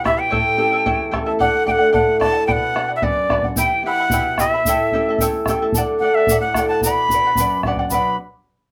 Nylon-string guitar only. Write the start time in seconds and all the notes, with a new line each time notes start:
Already playing: B2
0.05 B3 E4 G4
0.32 A2
0.57 A3 C#4 G4
0.86 E2
1.12 A3 C#4 G4
1.40 D3
1.66 A3 D4 F#4
1.93 A2
2.21 A3 D4 F#4
2.48 B2
2.75 B3 D4 F#4
3.03 F#2
3.28 B3 D4 F#4
3.56 E3
3.82 B3 E4 G4
4.10 B2
4.38 B3 E4 G4
4.66 A2
4.93 A3 C#4 G4
5.19 E2
5.46 A3 C#4 G4
5.75 D3
6.00 A3 D4 F#4
6.28 A2
6.54 A3 D4 F#4
6.82 B2
7.08 B3 D4 F#4
7.37 F#2
7.64 B3 D4 F#4
7.90 B2 F#3 D4 F#4 B4 F#5